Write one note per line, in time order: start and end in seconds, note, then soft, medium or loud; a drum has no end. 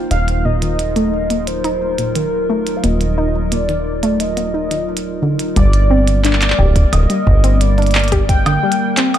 0.00 5.52 D#4 medium
0.00 5.52 F4 medium
0.11 2.80 D#1 medium
0.11 5.52 F#3 medium
0.11 0.20 D#4 medium
0.11 5.52 A#4 medium
0.11 0.46 F5 loud
0.11 closed hi-hat medium
0.28 closed hi-hat soft
0.45 0.61 A#2 medium
0.45 1.49 D#5 loud
0.62 0.71 D#3 medium
0.62 closed hi-hat soft
0.79 closed hi-hat medium
0.96 1.11 A3 loud
0.96 closed hi-hat soft
1.30 1.46 A#3 medium
1.30 closed hi-hat soft
1.47 2.17 C5 loud
1.47 closed hi-hat medium
1.64 1.73 D#4 loud
1.64 closed hi-hat soft
1.98 2.15 A#2 medium
1.98 closed hi-hat soft
2.15 2.25 D#3 medium
2.15 2.78 A#4 medium
2.15 closed hi-hat medium
2.50 2.65 A3 loud
2.67 closed hi-hat soft
2.77 2.85 F5 medium
2.84 5.53 D#1 medium
2.84 3.00 A#3 medium
2.84 3.53 D#5 loud
2.84 closed hi-hat medium
3.01 closed hi-hat soft
3.18 3.27 D#4 loud
3.52 3.68 A#2 medium
3.52 4.22 D5 loud
3.52 closed hi-hat medium
3.69 3.78 D#3 medium
3.69 closed hi-hat soft
4.03 4.18 A3 loud
4.03 closed hi-hat soft
4.20 5.22 D#5 loud
4.20 closed hi-hat medium
4.37 4.53 A#3 medium
4.37 closed hi-hat soft
4.54 4.69 D#4 medium
4.71 4.86 D#3 medium
4.71 closed hi-hat soft
4.97 closed hi-hat medium
5.22 5.38 D3 medium
5.39 closed hi-hat soft
5.56 6.54 G1 loud
5.56 9.18 G3 medium
5.56 5.66 G3 medium
5.56 9.18 A#3 medium
5.56 9.18 A#4 medium
5.56 6.21 D5 medium
5.56 kick loud
5.56 closed hi-hat medium
5.73 closed hi-hat soft
5.90 6.06 C4 loud
6.08 closed hi-hat medium
6.25 6.41 D4 medium
6.25 6.94 D5 loud
6.25 clap medium
6.25 closed hi-hat medium
6.33 clap medium
6.42 clap medium
6.42 closed hi-hat soft
6.50 clap loud
6.59 6.86 D1 loud
6.59 6.68 G4 loud
6.59 kick loud
6.76 kick loud
6.76 closed hi-hat medium
6.93 7.07 D1 medium
6.93 7.09 D3 medium
6.93 7.62 D#5 loud
6.93 closed hi-hat medium
6.93 percussion blips medium
7.10 7.19 G3 medium
7.10 closed hi-hat soft
7.27 8.58 G1 loud
7.27 kick loud
7.44 7.59 C4 loud
7.44 closed hi-hat medium
7.61 8.29 D5 medium
7.61 closed hi-hat medium
7.78 7.94 D4 medium
7.78 closed hi-hat soft
7.82 closed hi-hat soft
7.86 closed hi-hat soft
7.91 closed hi-hat soft
7.95 clap loud
7.95 closed hi-hat soft
7.99 closed hi-hat soft
8.04 closed hi-hat soft
8.08 closed hi-hat soft
8.12 8.21 G4 loud
8.12 kick medium
8.12 closed hi-hat medium
8.29 9.18 G5 loud
8.29 kick loud
8.29 closed hi-hat medium
8.46 8.62 D3 medium
8.46 closed hi-hat soft
8.46 percussion blips medium
8.63 8.72 G3 medium
8.72 closed hi-hat medium
8.97 9.13 C4 loud
8.97 clap loud
8.97 closed hi-hat medium
9.14 closed hi-hat soft
9.14 percussion blips medium